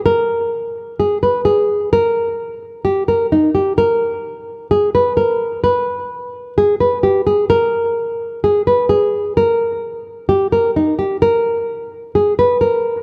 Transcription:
0.06 0.95 A#4 loud
1.00 1.17 G#4 medium
1.23 1.40 B4 medium
1.45 1.89 G#4 medium
1.93 2.81 A#4 loud
2.85 3.02 G4 medium
3.08 3.26 A#4 medium
3.32 3.50 D#4 medium
3.55 3.72 G4 medium
3.78 4.67 A#4 loud
4.71 4.89 G#4 medium
4.95 5.12 B4 medium
5.17 5.61 A#4 medium
5.64 6.53 B4 loud
6.58 6.75 G#4 loud
6.80 6.98 B4 medium
7.03 7.21 G4 medium
7.27 7.44 G#4 medium
7.50 8.39 A#4 loud
8.44 8.61 G#4 medium
8.67 8.85 B4 medium
8.89 9.33 G#4 medium
9.37 10.26 A#4 loud
10.29 10.47 G4 medium
10.52 10.70 A#4 medium
10.76 10.94 D#4 medium
10.99 11.16 G4 medium
11.22 12.11 A#4 loud
12.15 12.33 G#4 medium
12.39 12.56 B4 medium
12.61 13.03 A#4 medium

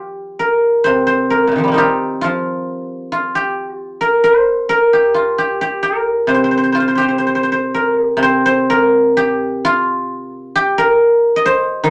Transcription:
0.00 1.34 F3 medium
0.00 1.77 F4 medium
0.00 1.77 G4 medium
0.39 1.30 A#4 medium
0.84 1.50 C3 soft
0.84 1.06 C5 medium
1.07 3.05 C5 medium
1.30 3.43 A#4 medium
1.47 1.78 A#2 soft
1.52 1.74 C3 soft
1.56 1.83 D#3 soft
1.56 1.80 F3 soft
1.64 1.83 G3 soft
1.64 4.90 A#3 soft
1.72 4.72 C4 soft
1.72 4.45 D#4 soft
1.77 2.21 F4 soft
1.77 3.35 G4 medium
2.21 4.94 F3 soft
2.21 3.12 F4 medium
3.12 3.76 F4 medium
3.35 3.76 G4 medium
3.76 4.93 F4 medium
4.01 4.69 A#4 medium
4.24 6.22 C5 medium
4.69 5.82 A#4 medium
4.93 5.38 G4 medium
5.14 6.74 F4 medium
5.38 5.61 G4 medium
5.61 6.97 G4 medium
5.83 7.74 A#4 medium
6.27 8.16 C3 soft
6.27 6.34 C5 medium
6.34 6.44 C5 soft
6.44 6.51 C5 soft
6.51 6.57 C5 soft
6.57 6.63 C5 soft
6.64 6.72 C5 soft
6.72 9.27 F4 medium
6.72 6.80 C5 soft
6.80 6.87 C5 soft
6.88 6.95 C5 soft
6.95 8.03 G4 medium
6.95 7.01 C5 soft
7.01 7.08 C5 soft
7.08 7.18 C5 soft
7.18 7.26 C5 soft
7.27 7.35 C5 soft
7.35 7.43 C5 soft
7.43 7.51 C5 soft
7.52 8.22 C5 soft
7.74 8.03 A#4 medium
8.03 8.69 G4 medium
8.17 10.95 C3 medium
8.23 8.45 C5 medium
8.46 10.44 C5 medium
8.70 10.78 A#4 medium
9.17 10.55 G4 medium
9.65 11.90 F4 medium
10.55 11.90 G4 medium
10.78 11.90 A#4 medium
11.36 11.90 D#5 medium
11.46 11.90 C5 medium
11.84 11.90 D#3 medium

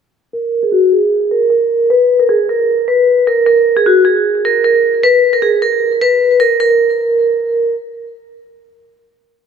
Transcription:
0.33 0.61 A#4 loud
0.63 0.71 G#4 medium
0.72 0.89 F#4 medium
0.92 1.29 G#4 medium
1.31 1.48 A#4 medium
1.50 1.87 A#4 medium
1.90 2.18 B4 loud
2.20 2.27 A#4 medium
2.29 2.46 G#4 medium
2.49 2.86 A#4 medium
2.88 3.25 B4 medium
3.27 3.44 A#4 medium
3.46 3.75 A#4 medium
3.77 3.84 G#4 medium
3.86 4.03 F#4 medium
4.05 4.42 G#4 medium
4.45 4.61 A#4 medium
4.64 5.01 A#4 medium
5.03 5.32 B4 medium
5.33 5.41 A#4 medium
5.42 5.59 G#4 medium
5.62 5.99 A#4 medium
6.01 6.38 B4 medium
6.40 6.57 A#4 medium
6.60 7.74 A#4 medium

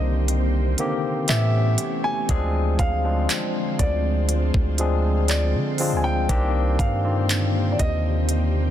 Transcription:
0.00 0.75 C2 loud
0.00 1.26 C3 medium
0.00 0.23 D3 medium
0.00 0.79 D#3 loud
0.00 0.79 A#3 medium
0.00 1.26 A#3 medium
0.00 0.80 C4 medium
0.00 1.26 C4 medium
0.00 1.31 D4 medium
0.00 0.81 G4 loud
0.00 1.26 G4 medium
0.00 1.31 A#4 medium
0.00 1.26 C5 medium
0.00 1.34 D#5 loud
0.28 closed hi-hat medium
0.78 1.30 D3 medium
0.78 1.29 D#3 medium
0.78 1.29 A#3 medium
0.78 1.29 C4 medium
0.78 1.30 G4 medium
0.78 closed hi-hat medium
1.28 1.77 A2 loud
1.28 2.09 E3 medium
1.28 2.28 E3 medium
1.28 2.28 A3 medium
1.28 2.09 A3 medium
1.28 2.10 B3 medium
1.28 2.28 C#4 medium
1.28 2.10 C#4 medium
1.28 2.28 G4 medium
1.28 2.10 G4 medium
1.28 2.28 C#5 medium
1.28 2.06 E5 loud
1.28 clap loud
1.28 closed hi-hat medium
1.78 closed hi-hat medium
2.04 2.81 G#5 loud
2.29 2.77 D2 loud
2.29 6.25 D3 medium
2.29 2.80 F3 loud
2.29 6.25 G#3 medium
2.29 2.80 G#3 medium
2.29 8.71 C4 medium
2.29 2.80 C4 medium
2.29 2.80 D4 medium
2.29 6.25 F4 medium
2.29 2.81 G#4 loud
2.29 8.71 C5 medium
2.29 kick loud
2.29 closed hi-hat medium
2.79 3.27 D2 loud
2.79 3.82 F5 loud
2.79 kick medium
2.79 closed hi-hat medium
3.04 4.22 F3 medium
3.04 4.23 G#3 medium
3.04 4.23 C4 medium
3.04 4.23 D4 medium
3.04 4.23 F4 medium
3.30 clap loud
3.30 closed hi-hat medium
3.79 4.51 D2 loud
3.79 5.28 D5 loud
3.79 kick medium
3.79 closed hi-hat medium
4.29 closed hi-hat medium
4.54 5.56 D2 loud
4.54 kick loud
4.78 5.47 F3 medium
4.78 5.47 G#3 medium
4.78 5.47 C4 medium
4.78 5.47 D4 medium
4.78 5.48 G#4 medium
4.78 closed hi-hat medium
5.28 5.99 D5 medium
5.28 clap loud
5.28 closed hi-hat medium
5.55 5.94 D3 loud
5.78 6.13 F3 medium
5.78 6.13 G#3 medium
5.78 6.13 C4 medium
5.78 6.14 D4 medium
5.78 6.14 F4 medium
5.78 open hi-hat medium
5.92 6.28 D2 loud
5.97 6.04 G#5 medium
6.04 6.81 G5 loud
6.29 6.77 C2 loud
6.29 8.71 C3 medium
6.29 6.80 D#3 loud
6.29 6.80 A#3 medium
6.29 8.71 A#3 medium
6.29 6.80 C4 medium
6.29 6.80 D4 medium
6.29 8.71 G4 medium
6.29 6.81 G4 loud
6.29 kick loud
6.29 closed hi-hat medium
6.79 7.75 G2 loud
6.79 7.75 F5 loud
6.79 kick medium
6.79 closed hi-hat medium
7.04 8.23 D3 medium
7.04 8.22 D#3 medium
7.04 8.23 A#3 medium
7.04 8.23 C4 medium
7.04 8.23 F4 medium
7.30 clap loud
7.30 closed hi-hat medium
7.72 7.79 D5 medium
7.79 8.71 D#2 loud
7.79 8.71 D#5 loud
7.79 kick medium
7.79 closed hi-hat medium
8.29 closed hi-hat medium

